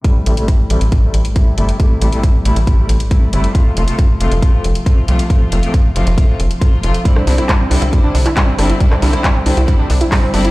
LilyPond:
<<
  \new Staff \with { instrumentName = "Synth arpeggio sound" } { \time 4/4 \key a \minor \tempo 4 = 137 r1 | r1 | r1 | r1 |
g16 d'16 d'16 e'16 g16 c'16 d'16 e'16 g16 d'16 d'16 e'16 g16 c'16 d'16 e'16 | g16 d'16 d'16 e'16 g16 c'16 d'16 e'16 g16 d'16 d'16 e'16 g16 c'16 d'16 e'16 | }
  \new Staff \with { instrumentName = "String section" } { \clef bass \time 4/4 \key a \minor <c g a e'>8 <c g a e'>16 <c g a e'>8 r16 <c g a e'>8 <c g a e'>8 r8 <c g a e'>8 <c g a e'>8 | <c g a e'>8 <c g a e'>16 <c g a e'>8 r16 <c g a e'>8 <c g a e'>8 r8 <c g a e'>8 <c g a e'>8 | <c f a f'>8 <c f a f'>16 <c f a f'>8 r16 <c f a f'>8 <c f a f'>8 r8 <c f a f'>8 <c f a f'>8 | <c f a f'>8 <c f a f'>16 <c f a f'>8 r16 <c f a f'>8 <c f a f'>8 r8 <c f a f'>8 <c f a f'>8 |
<d g c' e'>8 <d g c' e'>16 <d g c' e'>8 r16 <d g c' e'>8 <d g c' e'>8 r8 <d g c' e'>8 <d g c' e'>8 | <d g c' e'>8 <d g c' e'>16 <d g c' e'>8 r16 <d g c' e'>8 <d g c' e'>8 r8 <d g c' e'>8 <d g c' e'>8 | }
  \new Staff \with { instrumentName = "Analog synth bass" } { \clef bass \time 4/4 \key a \minor r8 a,,16 r8. a,,16 a,,16 r8 a,,16 r8. g,,16 r16 | r8 a,,16 r8. a,,16 a,,16 r8 a,,16 r8. g,,16 r16 | r8 f,,16 r8. f,,16 f,,16 r8 f,,16 r8. c,16 r16 | r8 f,,16 r8. f,,16 f,,16 r8 f,,16 r8. f,,16 r16 |
r8 c,16 r8. c,16 c,16 r8 c,16 r8. g,,16 r16 | r8 c,16 r8. c,16 c,16 r8 c,16 r8. g,,16 r16 | }
  \new DrumStaff \with { instrumentName = "Drums" } \drummode { \time 4/4 <hh bd>8 hh16 hh16 <hh bd>8 hh16 hh16 <hh bd>8 hh16 hh16 <hh bd>8 hh16 hh16 | <hh bd>8 hh16 hh16 <hh bd>8 hh16 hh16 <hh bd>8 hh16 hh16 <hh bd>8 hh16 hh16 | <hh bd>8 hh16 hh16 <hh bd>8 hh16 hh16 <hh bd>8 hh16 hh16 <hh bd>8 hh16 hh16 | <hh bd>8 hh16 hh16 <hh bd>8 hh16 hh16 <hh bd>8 hh16 hh16 <hh bd>8 hh16 hh16 |
<hh bd>16 ss16 hho16 <hh ss>16 <hc hh bd>8 hho16 hh16 <hh bd>8 hho16 <hc hh>16 <hc hh bd>8 <hho ss>16 hh16 | <hh bd>16 <hc ss>16 hho16 <hh ss>16 <hc hh bd>8 hho16 hh16 <hh bd>8 hho16 hh16 <hc hho bd>8 hho16 hh16 | }
>>